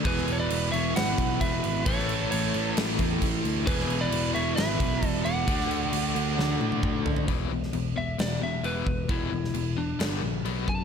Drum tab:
CC |x-x-x-x-x-x-x-x-|x-x-x-x-x-x-x-x-|x-x-x-x-x-x-x-x-|x-x-x-x---------|
SD |-o------o-------|-o------o-------|-o------o-------|-o------o-------|
T1 |----------------|----------------|----------------|----------oo----|
T2 |----------------|----------------|----------------|------------o---|
FT |----------------|----------------|----------------|--------------oo|
BD |o---------o-o---|o---------o-o---|o---------o-o---|o-----------o---|

CC |x---x---x---x---|x---x---x---x---|
SD |---o----o-------|---o----o-------|
T1 |----------------|----------------|
T2 |----------------|----------------|
FT |----------------|----------------|
BD |o-------------o-|o-------------o-|